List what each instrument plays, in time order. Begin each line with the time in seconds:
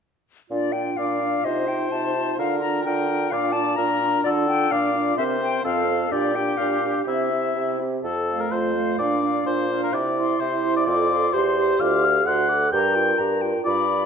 0.50 bassoon A#2, french horn D4, clarinet F4, flute D5
0.72 french horn D4, clarinet F4, flute G5
0.97 bassoon A#2, french horn D4, clarinet F4, oboe D5, flute F5
1.22 french horn D4, clarinet F4
1.44 bassoon C3, french horn D#4, clarinet F4, oboe C5, flute D#5
1.67 french horn D#4, clarinet F4, flute G5
1.91 bassoon C3, french horn D#4, clarinet F4, flute A5
2.15 french horn D#4, clarinet F4
2.38 bassoon D3, french horn D4, clarinet F4, oboe A#4, flute F5
2.60 french horn D4, clarinet F4, flute A#5
2.85 bassoon D3, french horn D4, clarinet F4, oboe A#4, flute G5
3.09 french horn D4, clarinet F4
3.31 bassoon A#2, french horn D4, clarinet F4, oboe D5, flute F5
3.52 french horn D4, clarinet F4, flute A5
3.76 bassoon A#2, french horn D4, clarinet F4, oboe A#4, flute A#5
4.02 french horn D4, clarinet F4
4.24 bassoon D3, french horn D4, clarinet F4, oboe A4, flute D5
4.48 french horn D4, clarinet F4, flute G5
4.71 bassoon A#2, french horn D4, clarinet F4, oboe D5, flute F5
4.94 french horn D4, clarinet F4
5.17 bassoon C3, french horn C4, clarinet A#4, oboe C5, flute E5
5.41 french horn C4, clarinet A#4, flute G5
5.64 bassoon F2, french horn C4, oboe A4, clarinet A4, flute F5
5.87 french horn C4, clarinet A4
6.11 bassoon A#2, french horn D4, oboe G4, clarinet G4, flute D5
6.35 french horn D4, clarinet G4, flute G5
6.57 bassoon A#2, french horn D4, clarinet G4, flute F5
6.82 french horn D4, clarinet G4
7.07 bassoon C3, french horn C4, oboe E4, clarinet G4, flute E5
7.32 french horn C4, clarinet G4
7.56 bassoon C3, french horn C4, clarinet G4
7.80 french horn C4, clarinet G4
8.03 bassoon F2, oboe A4
8.29 clarinet A3, flute F5
8.40 oboe A#4
8.51 bassoon F2, french horn F4, oboe C5
8.75 clarinet A3, flute F5
8.98 bassoon A#2, french horn D4, clarinet D4, oboe D5, flute F5
9.22 clarinet D4, flute F5
9.46 bassoon A#2, french horn F4, oboe C5
9.69 clarinet D4, flute F5
9.83 oboe A#4
9.93 bassoon C3, french horn E4, oboe D5
10.18 clarinet E4, flute C6
10.40 bassoon C3, oboe C5
10.65 clarinet E4, flute C6
10.76 oboe D5
10.86 bassoon F2, french horn F4, clarinet A4, oboe D5, flute C6
11.10 clarinet A4, flute C6
11.33 bassoon E2, french horn G4, clarinet G4, oboe C5, flute C6
11.57 clarinet G4, flute C6
11.80 bassoon D2, clarinet F4, oboe F5, flute D6
12.05 clarinet A4, flute F6
12.25 bassoon D2, clarinet F#4, french horn A4, oboe F#5, flute C6
12.49 clarinet A4, flute D6
12.72 bassoon G2, clarinet G4, french horn A#4, oboe G5, flute A#5
12.95 clarinet F4, flute G5
13.18 bassoon G2, clarinet G4, flute A#5
13.41 clarinet F4, flute G5
13.65 bassoon G2, clarinet F4, french horn F4, oboe D5, flute B5